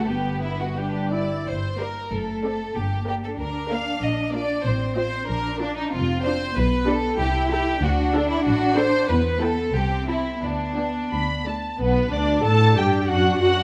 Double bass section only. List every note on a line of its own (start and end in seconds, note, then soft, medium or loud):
0.07 1.23 G1 soft
1.46 1.98 G1 soft
2.11 2.62 F#1 soft
2.75 3.26 G1 medium
3.38 3.89 D2 soft
4.02 4.52 A#1 medium
4.65 5.16 A1 medium
5.29 5.80 A#1 medium
5.93 6.44 F1 medium
6.57 7.07 B1 medium
7.20 7.70 C2 medium
7.83 8.33 D2 medium
8.45 8.95 A1 medium
9.09 9.61 E2 medium
9.74 10.28 C2 medium
10.43 10.97 D2 medium
11.13 11.67 D2 soft
11.81 12.11 B1 medium
12.13 12.45 D2 medium
12.45 12.76 A2 medium
12.76 13.09 G2 medium
13.09 13.40 F#2 medium
13.41 13.63 F#2 medium